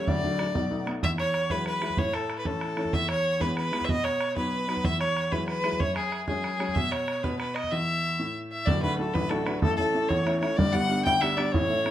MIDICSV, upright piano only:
0, 0, Header, 1, 2, 480
1, 0, Start_track
1, 0, Key_signature, 4, "major"
1, 0, Tempo, 318302
1, 119, Time_signature, 6, 3, 24, 8
1, 13077, Key_signature, 2, "major"
1, 17956, End_track
2, 0, Start_track
2, 0, Title_t, "Upright piano"
2, 0, Program_c, 0, 0
2, 116, Note_on_c, 0, 26, 61
2, 117, Note_on_c, 0, 38, 69
2, 353, Note_on_c, 0, 54, 52
2, 358, Note_on_c, 0, 57, 48
2, 361, Note_on_c, 0, 62, 55
2, 567, Note_off_c, 0, 54, 0
2, 572, Note_off_c, 0, 57, 0
2, 575, Note_off_c, 0, 62, 0
2, 582, Note_off_c, 0, 38, 0
2, 589, Note_on_c, 0, 54, 44
2, 595, Note_on_c, 0, 57, 39
2, 598, Note_on_c, 0, 62, 50
2, 784, Note_off_c, 0, 26, 0
2, 784, Note_off_c, 0, 54, 0
2, 787, Note_off_c, 0, 57, 0
2, 789, Note_off_c, 0, 62, 0
2, 828, Note_on_c, 0, 47, 64
2, 831, Note_on_c, 0, 35, 58
2, 1063, Note_on_c, 0, 57, 46
2, 1067, Note_on_c, 0, 59, 44
2, 1072, Note_on_c, 0, 63, 58
2, 1274, Note_off_c, 0, 57, 0
2, 1285, Note_off_c, 0, 59, 0
2, 1287, Note_off_c, 0, 63, 0
2, 1296, Note_off_c, 0, 47, 0
2, 1297, Note_on_c, 0, 57, 46
2, 1308, Note_on_c, 0, 59, 43
2, 1309, Note_on_c, 0, 63, 53
2, 1495, Note_off_c, 0, 57, 0
2, 1501, Note_off_c, 0, 35, 0
2, 1502, Note_off_c, 0, 59, 0
2, 1503, Note_off_c, 0, 63, 0
2, 1546, Note_on_c, 0, 40, 65
2, 2260, Note_on_c, 0, 54, 50
2, 2267, Note_on_c, 0, 56, 44
2, 2272, Note_on_c, 0, 64, 49
2, 2721, Note_off_c, 0, 54, 0
2, 2723, Note_off_c, 0, 56, 0
2, 2729, Note_off_c, 0, 64, 0
2, 2743, Note_on_c, 0, 54, 49
2, 2745, Note_on_c, 0, 56, 43
2, 2751, Note_on_c, 0, 64, 53
2, 2943, Note_off_c, 0, 40, 0
2, 2979, Note_off_c, 0, 54, 0
2, 2980, Note_off_c, 0, 56, 0
2, 2983, Note_off_c, 0, 64, 0
2, 2988, Note_on_c, 0, 45, 72
2, 3694, Note_on_c, 0, 52, 50
2, 3700, Note_on_c, 0, 57, 44
2, 3705, Note_on_c, 0, 61, 51
2, 4153, Note_off_c, 0, 52, 0
2, 4162, Note_off_c, 0, 57, 0
2, 4169, Note_off_c, 0, 61, 0
2, 4176, Note_on_c, 0, 52, 51
2, 4185, Note_on_c, 0, 57, 46
2, 4191, Note_on_c, 0, 61, 53
2, 4384, Note_off_c, 0, 45, 0
2, 4414, Note_off_c, 0, 52, 0
2, 4419, Note_off_c, 0, 57, 0
2, 4422, Note_off_c, 0, 61, 0
2, 4422, Note_on_c, 0, 40, 65
2, 5123, Note_on_c, 0, 52, 50
2, 5134, Note_on_c, 0, 56, 44
2, 5137, Note_on_c, 0, 59, 54
2, 5588, Note_off_c, 0, 52, 0
2, 5591, Note_off_c, 0, 56, 0
2, 5598, Note_off_c, 0, 59, 0
2, 5611, Note_on_c, 0, 52, 54
2, 5614, Note_on_c, 0, 56, 46
2, 5620, Note_on_c, 0, 59, 52
2, 5821, Note_off_c, 0, 40, 0
2, 5852, Note_off_c, 0, 52, 0
2, 5853, Note_off_c, 0, 56, 0
2, 5854, Note_on_c, 0, 47, 70
2, 5856, Note_off_c, 0, 59, 0
2, 6570, Note_on_c, 0, 54, 48
2, 6576, Note_on_c, 0, 59, 46
2, 6581, Note_on_c, 0, 63, 52
2, 7035, Note_off_c, 0, 54, 0
2, 7038, Note_off_c, 0, 59, 0
2, 7049, Note_off_c, 0, 63, 0
2, 7057, Note_on_c, 0, 54, 49
2, 7060, Note_on_c, 0, 59, 47
2, 7071, Note_on_c, 0, 63, 56
2, 7258, Note_off_c, 0, 47, 0
2, 7295, Note_off_c, 0, 54, 0
2, 7297, Note_off_c, 0, 59, 0
2, 7297, Note_on_c, 0, 40, 62
2, 7303, Note_off_c, 0, 63, 0
2, 8018, Note_on_c, 0, 54, 50
2, 8023, Note_on_c, 0, 56, 46
2, 8028, Note_on_c, 0, 64, 56
2, 8478, Note_off_c, 0, 54, 0
2, 8485, Note_off_c, 0, 56, 0
2, 8491, Note_off_c, 0, 64, 0
2, 8500, Note_on_c, 0, 54, 49
2, 8507, Note_on_c, 0, 56, 49
2, 8514, Note_on_c, 0, 64, 54
2, 8701, Note_off_c, 0, 40, 0
2, 8738, Note_off_c, 0, 54, 0
2, 8742, Note_off_c, 0, 56, 0
2, 8744, Note_on_c, 0, 42, 62
2, 8745, Note_off_c, 0, 64, 0
2, 9467, Note_on_c, 0, 54, 49
2, 9473, Note_on_c, 0, 56, 46
2, 9478, Note_on_c, 0, 61, 55
2, 9916, Note_off_c, 0, 54, 0
2, 9918, Note_off_c, 0, 56, 0
2, 9928, Note_off_c, 0, 61, 0
2, 9938, Note_on_c, 0, 54, 49
2, 9941, Note_on_c, 0, 56, 46
2, 9951, Note_on_c, 0, 61, 60
2, 10146, Note_off_c, 0, 42, 0
2, 10178, Note_off_c, 0, 54, 0
2, 10180, Note_off_c, 0, 56, 0
2, 10185, Note_off_c, 0, 61, 0
2, 10190, Note_on_c, 0, 47, 68
2, 10888, Note_off_c, 0, 47, 0
2, 10911, Note_on_c, 0, 47, 70
2, 11612, Note_off_c, 0, 47, 0
2, 11641, Note_on_c, 0, 40, 66
2, 12338, Note_off_c, 0, 40, 0
2, 12356, Note_on_c, 0, 45, 63
2, 13056, Note_off_c, 0, 45, 0
2, 13081, Note_on_c, 0, 38, 76
2, 13082, Note_on_c, 0, 26, 66
2, 13310, Note_on_c, 0, 57, 55
2, 13319, Note_on_c, 0, 62, 48
2, 13323, Note_on_c, 0, 66, 60
2, 13529, Note_off_c, 0, 57, 0
2, 13535, Note_off_c, 0, 62, 0
2, 13542, Note_off_c, 0, 66, 0
2, 13546, Note_off_c, 0, 38, 0
2, 13552, Note_on_c, 0, 57, 52
2, 13558, Note_on_c, 0, 62, 45
2, 13564, Note_on_c, 0, 66, 58
2, 13803, Note_on_c, 0, 33, 65
2, 13939, Note_off_c, 0, 57, 0
2, 13942, Note_off_c, 0, 62, 0
2, 13946, Note_off_c, 0, 66, 0
2, 14033, Note_on_c, 0, 57, 55
2, 14038, Note_on_c, 0, 62, 51
2, 14046, Note_on_c, 0, 66, 59
2, 14251, Note_off_c, 0, 57, 0
2, 14261, Note_off_c, 0, 62, 0
2, 14263, Note_off_c, 0, 66, 0
2, 14267, Note_off_c, 0, 33, 0
2, 14273, Note_on_c, 0, 57, 51
2, 14284, Note_on_c, 0, 62, 47
2, 14285, Note_on_c, 0, 66, 60
2, 14461, Note_off_c, 0, 26, 0
2, 14468, Note_off_c, 0, 57, 0
2, 14474, Note_off_c, 0, 62, 0
2, 14475, Note_off_c, 0, 66, 0
2, 14517, Note_on_c, 0, 45, 72
2, 14518, Note_on_c, 0, 33, 68
2, 14749, Note_on_c, 0, 57, 51
2, 14754, Note_on_c, 0, 61, 49
2, 14765, Note_on_c, 0, 64, 58
2, 14974, Note_off_c, 0, 57, 0
2, 14977, Note_off_c, 0, 61, 0
2, 14983, Note_off_c, 0, 64, 0
2, 14984, Note_off_c, 0, 45, 0
2, 14996, Note_on_c, 0, 57, 51
2, 14999, Note_on_c, 0, 61, 45
2, 15006, Note_on_c, 0, 64, 54
2, 15236, Note_on_c, 0, 40, 75
2, 15382, Note_off_c, 0, 57, 0
2, 15384, Note_off_c, 0, 61, 0
2, 15387, Note_off_c, 0, 64, 0
2, 15463, Note_on_c, 0, 57, 52
2, 15474, Note_on_c, 0, 61, 49
2, 15480, Note_on_c, 0, 64, 59
2, 15687, Note_off_c, 0, 57, 0
2, 15692, Note_off_c, 0, 61, 0
2, 15700, Note_off_c, 0, 64, 0
2, 15703, Note_off_c, 0, 40, 0
2, 15709, Note_on_c, 0, 57, 55
2, 15715, Note_on_c, 0, 61, 54
2, 15723, Note_on_c, 0, 64, 62
2, 15899, Note_off_c, 0, 33, 0
2, 15906, Note_off_c, 0, 57, 0
2, 15909, Note_off_c, 0, 61, 0
2, 15913, Note_off_c, 0, 64, 0
2, 15958, Note_on_c, 0, 43, 75
2, 15961, Note_on_c, 0, 31, 68
2, 16187, Note_on_c, 0, 55, 54
2, 16195, Note_on_c, 0, 59, 50
2, 16202, Note_on_c, 0, 62, 59
2, 16403, Note_off_c, 0, 55, 0
2, 16410, Note_off_c, 0, 59, 0
2, 16415, Note_off_c, 0, 62, 0
2, 16424, Note_off_c, 0, 43, 0
2, 16425, Note_on_c, 0, 55, 53
2, 16433, Note_on_c, 0, 59, 48
2, 16438, Note_on_c, 0, 62, 55
2, 16686, Note_on_c, 0, 38, 70
2, 16815, Note_off_c, 0, 55, 0
2, 16820, Note_off_c, 0, 59, 0
2, 16822, Note_off_c, 0, 62, 0
2, 16915, Note_on_c, 0, 55, 58
2, 16917, Note_on_c, 0, 59, 48
2, 16927, Note_on_c, 0, 62, 59
2, 17132, Note_off_c, 0, 55, 0
2, 17141, Note_off_c, 0, 59, 0
2, 17145, Note_off_c, 0, 62, 0
2, 17148, Note_off_c, 0, 38, 0
2, 17155, Note_on_c, 0, 55, 56
2, 17164, Note_on_c, 0, 59, 47
2, 17167, Note_on_c, 0, 62, 61
2, 17340, Note_off_c, 0, 31, 0
2, 17349, Note_off_c, 0, 55, 0
2, 17354, Note_off_c, 0, 59, 0
2, 17356, Note_off_c, 0, 62, 0
2, 17404, Note_on_c, 0, 45, 75
2, 17407, Note_on_c, 0, 33, 67
2, 17632, Note_on_c, 0, 57, 55
2, 17639, Note_on_c, 0, 61, 51
2, 17647, Note_on_c, 0, 64, 60
2, 17846, Note_off_c, 0, 57, 0
2, 17850, Note_off_c, 0, 61, 0
2, 17855, Note_off_c, 0, 64, 0
2, 17867, Note_off_c, 0, 45, 0
2, 17868, Note_on_c, 0, 57, 51
2, 17872, Note_on_c, 0, 61, 47
2, 17878, Note_on_c, 0, 64, 57
2, 17956, Note_off_c, 0, 33, 0
2, 17956, Note_off_c, 0, 57, 0
2, 17956, Note_off_c, 0, 61, 0
2, 17956, Note_off_c, 0, 64, 0
2, 17956, End_track
0, 0, End_of_file